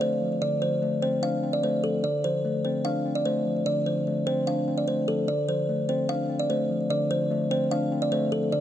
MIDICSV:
0, 0, Header, 1, 3, 480
1, 0, Start_track
1, 0, Key_signature, -1, "minor"
1, 0, Tempo, 405405
1, 493, Time_signature, 4, 2, 24, 8
1, 10188, End_track
2, 0, Start_track
2, 0, Title_t, "Kalimba"
2, 0, Program_c, 0, 108
2, 11, Note_on_c, 0, 72, 89
2, 463, Note_off_c, 0, 72, 0
2, 494, Note_on_c, 0, 74, 93
2, 700, Note_off_c, 0, 74, 0
2, 731, Note_on_c, 0, 72, 87
2, 1183, Note_off_c, 0, 72, 0
2, 1212, Note_on_c, 0, 72, 84
2, 1419, Note_off_c, 0, 72, 0
2, 1454, Note_on_c, 0, 77, 90
2, 1792, Note_off_c, 0, 77, 0
2, 1814, Note_on_c, 0, 74, 81
2, 1917, Note_off_c, 0, 74, 0
2, 1935, Note_on_c, 0, 72, 73
2, 2141, Note_off_c, 0, 72, 0
2, 2174, Note_on_c, 0, 69, 83
2, 2380, Note_off_c, 0, 69, 0
2, 2414, Note_on_c, 0, 74, 89
2, 2620, Note_off_c, 0, 74, 0
2, 2655, Note_on_c, 0, 72, 89
2, 3105, Note_off_c, 0, 72, 0
2, 3133, Note_on_c, 0, 72, 77
2, 3339, Note_off_c, 0, 72, 0
2, 3371, Note_on_c, 0, 77, 93
2, 3710, Note_off_c, 0, 77, 0
2, 3734, Note_on_c, 0, 74, 79
2, 3837, Note_off_c, 0, 74, 0
2, 3853, Note_on_c, 0, 72, 85
2, 4304, Note_off_c, 0, 72, 0
2, 4333, Note_on_c, 0, 74, 92
2, 4540, Note_off_c, 0, 74, 0
2, 4574, Note_on_c, 0, 72, 76
2, 5024, Note_off_c, 0, 72, 0
2, 5052, Note_on_c, 0, 72, 90
2, 5259, Note_off_c, 0, 72, 0
2, 5294, Note_on_c, 0, 77, 89
2, 5632, Note_off_c, 0, 77, 0
2, 5654, Note_on_c, 0, 74, 71
2, 5757, Note_off_c, 0, 74, 0
2, 5773, Note_on_c, 0, 72, 77
2, 5979, Note_off_c, 0, 72, 0
2, 6014, Note_on_c, 0, 69, 83
2, 6220, Note_off_c, 0, 69, 0
2, 6253, Note_on_c, 0, 74, 85
2, 6460, Note_off_c, 0, 74, 0
2, 6495, Note_on_c, 0, 72, 84
2, 6945, Note_off_c, 0, 72, 0
2, 6972, Note_on_c, 0, 72, 77
2, 7179, Note_off_c, 0, 72, 0
2, 7212, Note_on_c, 0, 77, 103
2, 7550, Note_off_c, 0, 77, 0
2, 7571, Note_on_c, 0, 74, 83
2, 7675, Note_off_c, 0, 74, 0
2, 7693, Note_on_c, 0, 72, 86
2, 8144, Note_off_c, 0, 72, 0
2, 8174, Note_on_c, 0, 74, 94
2, 8380, Note_off_c, 0, 74, 0
2, 8415, Note_on_c, 0, 72, 89
2, 8865, Note_off_c, 0, 72, 0
2, 8893, Note_on_c, 0, 72, 85
2, 9100, Note_off_c, 0, 72, 0
2, 9133, Note_on_c, 0, 77, 90
2, 9471, Note_off_c, 0, 77, 0
2, 9495, Note_on_c, 0, 74, 81
2, 9597, Note_off_c, 0, 74, 0
2, 9612, Note_on_c, 0, 72, 77
2, 9819, Note_off_c, 0, 72, 0
2, 9851, Note_on_c, 0, 69, 84
2, 10058, Note_off_c, 0, 69, 0
2, 10092, Note_on_c, 0, 74, 89
2, 10188, Note_off_c, 0, 74, 0
2, 10188, End_track
3, 0, Start_track
3, 0, Title_t, "Tine electric piano"
3, 0, Program_c, 1, 4
3, 0, Control_c, 1, 64, 127
3, 0, Note_on_c, 1, 50, 88
3, 0, Note_on_c, 1, 53, 74
3, 0, Note_on_c, 1, 57, 80
3, 0, Note_on_c, 1, 60, 75
3, 0, Note_on_c, 1, 62, 74
3, 12, Note_off_c, 1, 57, 0
3, 12, Note_on_c, 1, 57, 93
3, 253, Note_off_c, 1, 53, 0
3, 253, Note_on_c, 1, 53, 75
3, 489, Note_off_c, 1, 50, 0
3, 489, Note_on_c, 1, 50, 93
3, 718, Note_off_c, 1, 53, 0
3, 732, Note_on_c, 1, 53, 74
3, 734, Note_off_c, 1, 62, 0
3, 957, Note_off_c, 1, 57, 0
3, 971, Note_on_c, 1, 57, 86
3, 972, Note_off_c, 1, 60, 0
3, 1209, Note_on_c, 1, 60, 97
3, 1449, Note_on_c, 1, 62, 84
3, 1682, Note_off_c, 1, 60, 0
3, 1690, Note_off_c, 1, 50, 0
3, 1696, Note_on_c, 1, 60, 78
3, 1918, Note_off_c, 1, 57, 0
3, 1932, Note_off_c, 1, 53, 0
3, 1933, Note_on_c, 1, 57, 101
3, 2173, Note_on_c, 1, 53, 72
3, 2411, Note_off_c, 1, 62, 0
3, 2412, Note_off_c, 1, 57, 0
3, 2412, Note_on_c, 1, 50, 92
3, 2413, Note_off_c, 1, 53, 0
3, 2414, Note_off_c, 1, 60, 0
3, 2428, Control_c, 1, 64, 0
3, 2650, Control_c, 1, 64, 127
3, 2653, Note_on_c, 1, 53, 78
3, 2896, Note_on_c, 1, 57, 90
3, 3136, Note_on_c, 1, 60, 98
3, 3370, Note_on_c, 1, 62, 89
3, 3604, Note_off_c, 1, 60, 0
3, 3612, Note_off_c, 1, 50, 0
3, 3618, Note_on_c, 1, 60, 83
3, 3842, Note_off_c, 1, 57, 0
3, 3853, Note_off_c, 1, 53, 0
3, 3856, Note_on_c, 1, 57, 95
3, 4095, Note_on_c, 1, 53, 72
3, 4335, Note_on_c, 1, 50, 91
3, 4562, Note_off_c, 1, 53, 0
3, 4571, Note_off_c, 1, 62, 0
3, 4576, Note_on_c, 1, 53, 75
3, 4805, Note_off_c, 1, 57, 0
3, 4815, Note_off_c, 1, 60, 0
3, 4819, Note_on_c, 1, 57, 77
3, 5056, Note_on_c, 1, 60, 105
3, 5296, Note_on_c, 1, 62, 85
3, 5522, Note_off_c, 1, 60, 0
3, 5533, Note_off_c, 1, 50, 0
3, 5536, Note_on_c, 1, 60, 77
3, 5760, Note_off_c, 1, 57, 0
3, 5774, Note_off_c, 1, 53, 0
3, 5774, Note_on_c, 1, 57, 86
3, 6011, Note_on_c, 1, 53, 72
3, 6252, Note_off_c, 1, 53, 0
3, 6253, Note_off_c, 1, 57, 0
3, 6253, Note_on_c, 1, 50, 87
3, 6254, Note_off_c, 1, 60, 0
3, 6254, Note_off_c, 1, 62, 0
3, 6265, Control_c, 1, 64, 0
3, 6486, Control_c, 1, 64, 127
3, 6492, Note_on_c, 1, 53, 77
3, 6737, Note_on_c, 1, 57, 80
3, 6974, Note_on_c, 1, 60, 103
3, 7216, Note_on_c, 1, 62, 78
3, 7436, Note_off_c, 1, 60, 0
3, 7450, Note_on_c, 1, 60, 77
3, 7453, Note_off_c, 1, 50, 0
3, 7678, Note_off_c, 1, 57, 0
3, 7692, Note_off_c, 1, 53, 0
3, 7692, Note_on_c, 1, 57, 94
3, 7932, Note_on_c, 1, 53, 76
3, 8167, Note_on_c, 1, 50, 96
3, 8399, Note_off_c, 1, 53, 0
3, 8413, Note_on_c, 1, 53, 73
3, 8414, Note_off_c, 1, 62, 0
3, 8637, Note_off_c, 1, 57, 0
3, 8651, Note_off_c, 1, 60, 0
3, 8651, Note_on_c, 1, 57, 89
3, 8892, Note_on_c, 1, 60, 96
3, 9131, Note_on_c, 1, 62, 87
3, 9359, Note_off_c, 1, 60, 0
3, 9370, Note_off_c, 1, 50, 0
3, 9374, Note_on_c, 1, 60, 81
3, 9601, Note_off_c, 1, 57, 0
3, 9613, Note_off_c, 1, 53, 0
3, 9615, Note_on_c, 1, 57, 103
3, 9853, Note_on_c, 1, 53, 72
3, 10091, Note_off_c, 1, 62, 0
3, 10092, Note_on_c, 1, 50, 94
3, 10093, Note_off_c, 1, 53, 0
3, 10093, Note_off_c, 1, 60, 0
3, 10094, Note_off_c, 1, 57, 0
3, 10106, Control_c, 1, 64, 0
3, 10188, Note_off_c, 1, 50, 0
3, 10188, End_track
0, 0, End_of_file